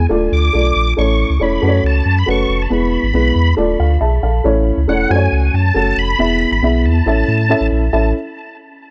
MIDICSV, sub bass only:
0, 0, Header, 1, 2, 480
1, 0, Start_track
1, 0, Key_signature, 3, "major"
1, 0, Tempo, 434468
1, 1074, Time_signature, 4, 2, 24, 8
1, 9839, End_track
2, 0, Start_track
2, 0, Title_t, "Sub bass"
2, 0, Program_c, 0, 38
2, 112, Note_on_c, 0, 26, 111
2, 311, Note_off_c, 0, 26, 0
2, 354, Note_on_c, 0, 38, 104
2, 552, Note_off_c, 0, 38, 0
2, 600, Note_on_c, 0, 35, 96
2, 795, Note_off_c, 0, 35, 0
2, 836, Note_on_c, 0, 34, 90
2, 1033, Note_off_c, 0, 34, 0
2, 1082, Note_on_c, 0, 33, 112
2, 1375, Note_off_c, 0, 33, 0
2, 1435, Note_on_c, 0, 37, 89
2, 1533, Note_off_c, 0, 37, 0
2, 1553, Note_on_c, 0, 28, 87
2, 1751, Note_off_c, 0, 28, 0
2, 1796, Note_on_c, 0, 42, 105
2, 1992, Note_off_c, 0, 42, 0
2, 2029, Note_on_c, 0, 37, 98
2, 2228, Note_off_c, 0, 37, 0
2, 2270, Note_on_c, 0, 42, 101
2, 2469, Note_off_c, 0, 42, 0
2, 2514, Note_on_c, 0, 30, 92
2, 2711, Note_off_c, 0, 30, 0
2, 2748, Note_on_c, 0, 29, 99
2, 2948, Note_off_c, 0, 29, 0
2, 2989, Note_on_c, 0, 28, 105
2, 3287, Note_off_c, 0, 28, 0
2, 3348, Note_on_c, 0, 32, 90
2, 3449, Note_off_c, 0, 32, 0
2, 3465, Note_on_c, 0, 35, 98
2, 3666, Note_off_c, 0, 35, 0
2, 3705, Note_on_c, 0, 40, 113
2, 3906, Note_off_c, 0, 40, 0
2, 3952, Note_on_c, 0, 26, 110
2, 4150, Note_off_c, 0, 26, 0
2, 4194, Note_on_c, 0, 38, 107
2, 4391, Note_off_c, 0, 38, 0
2, 4430, Note_on_c, 0, 35, 96
2, 4629, Note_off_c, 0, 35, 0
2, 4670, Note_on_c, 0, 34, 93
2, 4869, Note_off_c, 0, 34, 0
2, 4911, Note_on_c, 0, 33, 111
2, 5209, Note_off_c, 0, 33, 0
2, 5272, Note_on_c, 0, 37, 91
2, 5372, Note_off_c, 0, 37, 0
2, 5391, Note_on_c, 0, 28, 98
2, 5590, Note_off_c, 0, 28, 0
2, 5637, Note_on_c, 0, 42, 106
2, 5834, Note_off_c, 0, 42, 0
2, 5879, Note_on_c, 0, 37, 98
2, 6076, Note_off_c, 0, 37, 0
2, 6118, Note_on_c, 0, 42, 104
2, 6315, Note_off_c, 0, 42, 0
2, 6354, Note_on_c, 0, 30, 94
2, 6553, Note_off_c, 0, 30, 0
2, 6594, Note_on_c, 0, 29, 97
2, 6793, Note_off_c, 0, 29, 0
2, 6836, Note_on_c, 0, 28, 103
2, 7133, Note_off_c, 0, 28, 0
2, 7198, Note_on_c, 0, 32, 86
2, 7297, Note_off_c, 0, 32, 0
2, 7319, Note_on_c, 0, 35, 88
2, 7554, Note_on_c, 0, 40, 103
2, 7570, Note_off_c, 0, 35, 0
2, 7753, Note_off_c, 0, 40, 0
2, 7801, Note_on_c, 0, 33, 99
2, 7997, Note_off_c, 0, 33, 0
2, 8043, Note_on_c, 0, 45, 101
2, 8338, Note_off_c, 0, 45, 0
2, 8402, Note_on_c, 0, 33, 91
2, 8499, Note_off_c, 0, 33, 0
2, 8524, Note_on_c, 0, 34, 93
2, 8719, Note_off_c, 0, 34, 0
2, 8759, Note_on_c, 0, 33, 104
2, 8982, Note_off_c, 0, 33, 0
2, 9839, End_track
0, 0, End_of_file